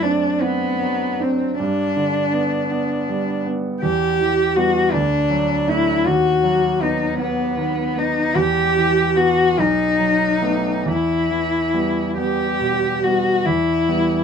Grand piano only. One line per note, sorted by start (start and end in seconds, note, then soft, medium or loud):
0.00 1.56 F#2 soft
0.00 0.27 A3 soft
0.00 0.39 C4 soft
0.00 0.39 D4 soft
0.41 0.77 C4 soft
0.41 0.77 D4 soft
0.82 1.44 F#3 soft
1.20 1.55 C4 soft
1.20 1.55 D4 soft
1.60 3.79 G2 soft
1.96 2.56 D3 soft
2.33 2.67 B3 soft
2.71 3.05 B3 soft
3.09 3.68 G3 soft
3.46 3.80 B3 soft
3.83 4.91 E2 soft
4.20 4.79 E3 soft
4.56 4.90 G3 soft
4.56 4.90 B3 soft
4.94 6.02 D2 soft
5.30 5.90 F#3 soft
5.68 6.02 A3 soft
5.68 6.02 D4 soft
6.05 8.31 D#2 soft
6.43 7.04 F#3 soft
6.81 7.15 B3 soft
7.18 7.53 B3 soft
7.57 8.19 D#3 soft
7.96 8.31 B3 soft
8.35 9.53 E2 soft
8.77 9.41 E3 soft
9.15 9.53 B3 soft
9.57 10.83 B1 soft
9.99 10.69 F#3 soft
10.42 10.82 A3 soft
10.42 10.82 B3 soft
10.86 13.43 E2 soft
11.30 12.00 E3 soft
11.74 12.14 G3 soft
11.74 12.14 B3 soft
12.17 12.57 G3 soft
12.17 12.57 B3 soft
12.61 13.31 B2 soft
13.04 13.43 G3 soft
13.04 13.43 B3 soft
13.46 13.87 E2 soft
13.89 14.24 E3 soft
13.89 14.24 G3 soft
13.89 14.24 B3 soft